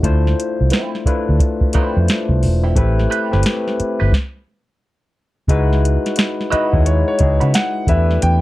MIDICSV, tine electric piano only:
0, 0, Header, 1, 2, 480
1, 0, Start_track
1, 0, Tempo, 681818
1, 23, Time_signature, 4, 2, 24, 8
1, 5923, End_track
2, 0, Start_track
2, 0, Title_t, "Tine electric piano"
2, 0, Program_c, 0, 4
2, 0, Control_c, 0, 64, 127
2, 22, Note_on_c, 0, 57, 90
2, 25, Note_on_c, 0, 62, 76
2, 29, Note_on_c, 0, 64, 71
2, 30, Control_c, 0, 64, 0
2, 32, Note_on_c, 0, 65, 82
2, 35, Note_on_c, 0, 72, 97
2, 142, Control_c, 0, 64, 127
2, 697, Note_off_c, 0, 57, 0
2, 698, Note_off_c, 0, 62, 0
2, 700, Note_off_c, 0, 64, 0
2, 702, Note_off_c, 0, 65, 0
2, 703, Note_off_c, 0, 72, 0
2, 746, Note_on_c, 0, 57, 80
2, 747, Note_on_c, 0, 62, 77
2, 750, Note_on_c, 0, 64, 79
2, 755, Note_on_c, 0, 65, 67
2, 760, Note_on_c, 0, 71, 86
2, 1194, Note_off_c, 0, 57, 0
2, 1194, Note_off_c, 0, 62, 0
2, 1196, Note_off_c, 0, 64, 0
2, 1198, Note_off_c, 0, 65, 0
2, 1201, Note_off_c, 0, 71, 0
2, 1221, Note_on_c, 0, 57, 67
2, 1225, Note_on_c, 0, 62, 63
2, 1230, Note_on_c, 0, 64, 59
2, 1232, Note_on_c, 0, 65, 60
2, 1236, Note_on_c, 0, 71, 63
2, 1282, Note_on_c, 0, 72, 82
2, 1287, Note_off_c, 0, 71, 0
2, 1896, Note_off_c, 0, 57, 0
2, 1898, Note_off_c, 0, 62, 0
2, 1901, Note_off_c, 0, 64, 0
2, 1902, Note_off_c, 0, 65, 0
2, 1927, Note_off_c, 0, 72, 0
2, 1941, Note_on_c, 0, 57, 95
2, 1945, Note_on_c, 0, 60, 73
2, 1948, Note_on_c, 0, 64, 82
2, 1951, Note_on_c, 0, 67, 78
2, 1952, Control_c, 0, 64, 0
2, 1956, Note_on_c, 0, 71, 100
2, 2056, Control_c, 0, 64, 127
2, 2294, Note_off_c, 0, 57, 0
2, 2296, Note_off_c, 0, 60, 0
2, 2298, Note_off_c, 0, 64, 0
2, 2299, Note_off_c, 0, 67, 0
2, 2301, Note_off_c, 0, 71, 0
2, 2336, Note_on_c, 0, 57, 79
2, 2338, Note_on_c, 0, 60, 73
2, 2342, Note_on_c, 0, 64, 76
2, 2345, Note_on_c, 0, 67, 72
2, 2349, Note_on_c, 0, 71, 80
2, 2903, Note_off_c, 0, 57, 0
2, 2905, Note_off_c, 0, 60, 0
2, 2907, Note_off_c, 0, 64, 0
2, 2908, Note_off_c, 0, 67, 0
2, 2910, Note_off_c, 0, 71, 0
2, 2912, Control_c, 0, 64, 0
2, 3863, Note_on_c, 0, 56, 105
2, 3867, Note_on_c, 0, 63, 92
2, 3870, Note_on_c, 0, 64, 92
2, 3874, Note_on_c, 0, 66, 90
2, 3877, Note_on_c, 0, 71, 114
2, 4013, Control_c, 0, 64, 127
2, 4537, Note_off_c, 0, 56, 0
2, 4539, Note_off_c, 0, 63, 0
2, 4541, Note_off_c, 0, 64, 0
2, 4542, Note_off_c, 0, 66, 0
2, 4544, Note_off_c, 0, 71, 0
2, 4582, Note_on_c, 0, 56, 66
2, 4586, Note_on_c, 0, 63, 73
2, 4589, Note_on_c, 0, 64, 73
2, 4593, Note_on_c, 0, 66, 67
2, 4597, Note_on_c, 0, 71, 75
2, 4721, Note_off_c, 0, 56, 0
2, 4723, Note_off_c, 0, 63, 0
2, 4724, Note_off_c, 0, 64, 0
2, 4726, Note_off_c, 0, 66, 0
2, 4728, Note_off_c, 0, 71, 0
2, 4734, Note_on_c, 0, 56, 72
2, 4737, Note_on_c, 0, 63, 67
2, 4741, Note_on_c, 0, 64, 62
2, 4745, Note_on_c, 0, 66, 58
2, 4748, Note_on_c, 0, 73, 74
2, 5040, Note_off_c, 0, 56, 0
2, 5042, Note_off_c, 0, 63, 0
2, 5043, Note_off_c, 0, 64, 0
2, 5045, Note_off_c, 0, 66, 0
2, 5047, Note_off_c, 0, 73, 0
2, 5063, Note_on_c, 0, 56, 72
2, 5069, Note_on_c, 0, 63, 59
2, 5071, Note_on_c, 0, 64, 69
2, 5075, Note_on_c, 0, 66, 62
2, 5079, Note_on_c, 0, 68, 78
2, 5542, Note_off_c, 0, 64, 0
2, 5542, Note_on_c, 0, 57, 83
2, 5543, Note_off_c, 0, 56, 0
2, 5544, Note_on_c, 0, 62, 78
2, 5546, Note_off_c, 0, 63, 0
2, 5549, Note_off_c, 0, 66, 0
2, 5550, Note_on_c, 0, 64, 79
2, 5551, Note_off_c, 0, 68, 0
2, 5551, Control_c, 0, 64, 0
2, 5552, Note_on_c, 0, 67, 77
2, 5556, Note_on_c, 0, 71, 90
2, 5687, Control_c, 0, 64, 127
2, 5923, Note_off_c, 0, 57, 0
2, 5923, Note_off_c, 0, 62, 0
2, 5923, Note_off_c, 0, 64, 0
2, 5923, Note_off_c, 0, 67, 0
2, 5923, Note_off_c, 0, 71, 0
2, 5923, End_track
0, 0, End_of_file